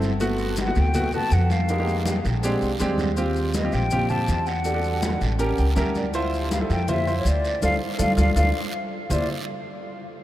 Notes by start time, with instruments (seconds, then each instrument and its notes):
Already playing: upright bass G1
0.02 high conga, short guiro, maracas
0.20 grand piano A3 B3 F#4, high conga, long guiro, maracas
0.38 high conga, maracas
0.56 high conga, short guiro, maracas
0.61 flute F#5
0.66 grand piano A3 B3 F#4
0.75 upright bass D2, high conga, short guiro, maracas
0.80 flute G5
0.94 grand piano A3 B3 F#4, high conga, low conga, long guiro, maracas
1.12 grand piano A3 B3 F#4, flute A5, high conga, low conga, maracas
1.31 upright bass F2, flute F#5, high conga, short guiro, maracas
1.50 flute F5, high conga, short guiro, maracas
1.69 grand piano G#3 A#3 D#4 G4, high conga, long guiro, maracas
1.78 grand piano G#3 A#3 D#4 G4
1.87 high conga, maracas
2.05 high conga, short guiro, maracas
2.24 upright bass A#1, high conga, short guiro, maracas
2.43 grand piano G#3 C4 D4 G4, high conga, long guiro, maracas
2.61 upright bass C2, high conga, maracas
2.80 upright bass D#2, grand piano G#3 C4 D4 G4, high conga, short guiro, maracas
2.98 high conga, short guiro, maracas
3.17 grand piano C4 F4 G4, long guiro, maracas
3.36 high conga, maracas
3.54 flute D#5, high conga, short guiro, maracas
3.63 grand piano C4 F4 G4
3.72 upright bass A#1, flute G5, high conga, short guiro, maracas
3.91 grand piano C4 F4 G4, high conga, low conga, long guiro, maracas
4.09 grand piano C4 F4 G4, flute A5, high conga, low conga, maracas
4.28 upright bass E2, high conga, short guiro, maracas
4.46 flute F#5, short guiro, maracas
4.64 grand piano D4 F#4 G4 A4, high conga, long guiro, maracas
4.74 grand piano D4 F#4 G4 A4
4.84 high conga, maracas
5.02 high conga, short guiro, maracas
5.21 upright bass A1, high conga, short guiro, maracas
5.39 grand piano C#4 G4 A#4, high conga, long guiro, maracas
5.58 upright bass C#2, grand piano G5, high conga, maracas
5.76 upright bass D2, grand piano C#4 G4 A#4 E5, high conga, short guiro, maracas
5.95 grand piano D5, high conga, short guiro, maracas
6.14 grand piano E4 F4 C5, high conga, long guiro, maracas
6.33 high conga, maracas
6.51 flute F5, high conga, short guiro, maracas
6.60 grand piano E4 F4 A4
6.70 upright bass F2, flute G5, high conga, short guiro, maracas
6.88 grand piano E4 F4 C5, flute E5, high conga, low conga, long guiro, maracas
7.07 grand piano E4 F4 C5, high conga, maracas
7.19 flute C#5
7.25 upright bass D2, flute D5, high conga, short guiro, maracas
7.45 short guiro, maracas
7.62 upright bass D2, grand piano D4 F4 A4, flute F5, high conga, long guiro, maracas
7.98 upright bass D2, grand piano D4 F4 A4, flute F5, high conga, maracas
8.17 upright bass D2, grand piano D4 F4 A4, flute F5, high conga, long guiro, maracas
8.36 upright bass D2, grand piano D4 F4 A4, flute F5, high conga, long guiro, maracas
9.10 upright bass D2, grand piano E4 F4 C5, flute D5, low conga, long guiro, maracas